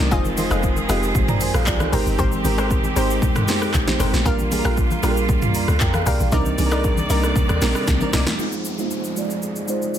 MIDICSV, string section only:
0, 0, Header, 1, 2, 480
1, 0, Start_track
1, 0, Tempo, 517241
1, 109, Time_signature, 4, 2, 24, 8
1, 9269, End_track
2, 0, Start_track
2, 0, Title_t, "String section"
2, 0, Program_c, 0, 48
2, 0, Note_on_c, 0, 51, 91
2, 108, Note_on_c, 0, 53, 88
2, 108, Note_on_c, 0, 60, 78
2, 108, Note_on_c, 0, 68, 89
2, 1753, Note_off_c, 0, 51, 0
2, 1772, Note_off_c, 0, 53, 0
2, 1772, Note_off_c, 0, 68, 0
2, 1789, Note_on_c, 0, 56, 84
2, 1790, Note_on_c, 0, 67, 95
2, 3911, Note_off_c, 0, 60, 0
2, 3927, Note_off_c, 0, 56, 0
2, 3928, Note_off_c, 0, 67, 0
2, 3946, Note_on_c, 0, 65, 94
2, 3948, Note_on_c, 0, 55, 85
2, 3948, Note_on_c, 0, 58, 80
2, 5848, Note_off_c, 0, 65, 0
2, 5849, Note_off_c, 0, 55, 0
2, 5849, Note_off_c, 0, 58, 0
2, 5869, Note_on_c, 0, 48, 81
2, 5869, Note_on_c, 0, 58, 80
2, 5870, Note_on_c, 0, 51, 94
2, 5871, Note_on_c, 0, 74, 81
2, 7770, Note_off_c, 0, 48, 0
2, 7770, Note_off_c, 0, 51, 0
2, 7770, Note_off_c, 0, 58, 0
2, 7771, Note_off_c, 0, 74, 0
2, 7787, Note_on_c, 0, 63, 68
2, 7788, Note_on_c, 0, 41, 74
2, 7788, Note_on_c, 0, 53, 68
2, 7789, Note_on_c, 0, 68, 81
2, 9269, Note_off_c, 0, 41, 0
2, 9269, Note_off_c, 0, 53, 0
2, 9269, Note_off_c, 0, 63, 0
2, 9269, Note_off_c, 0, 68, 0
2, 9269, End_track
0, 0, End_of_file